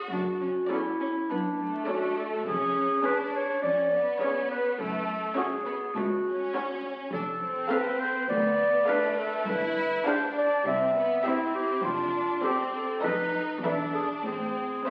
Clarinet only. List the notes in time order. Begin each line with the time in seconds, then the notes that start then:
0.12 F#4
0.71 E4
1.30 D4
1.88 F#4
2.17 A4
2.47 G#4
3.05 B4
3.35 C#5
3.63 D5
4.21 C#5
4.51 B4
4.79 A4
5.37 G#4
5.96 F#4
7.13 A4
7.70 B4
8.00 C5
8.29 D5
8.88 B4
9.18 A4
9.49 B4
10.08 C5
10.38 D5
10.67 E5
11.26 E4
11.55 G4
11.84 F4
12.44 G4
12.73 A4
13.04 B4
13.64 A4
13.95 G#4
14.25 G#4